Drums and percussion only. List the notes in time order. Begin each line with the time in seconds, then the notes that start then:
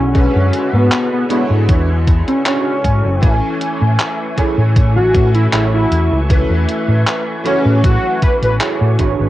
0.15 kick, closed hi-hat
0.53 closed hi-hat
0.92 clap, closed hi-hat
1.30 closed hi-hat
1.69 kick, closed hi-hat
2.07 kick, closed hi-hat
2.28 closed hi-hat
2.46 clap, closed hi-hat
2.84 kick, closed hi-hat
3.23 kick, closed hi-hat
3.61 closed hi-hat
3.99 clap, closed hi-hat
4.38 kick, closed hi-hat
4.76 kick, closed hi-hat
5.15 kick, closed hi-hat
5.35 closed hi-hat
5.53 clap, closed hi-hat
5.92 closed hi-hat
6.30 kick, closed hi-hat
6.69 closed hi-hat
7.07 clap, closed hi-hat
7.45 closed hi-hat
7.84 kick, closed hi-hat
8.22 kick, closed hi-hat
8.42 closed hi-hat
8.61 clap, closed hi-hat
8.99 kick, closed hi-hat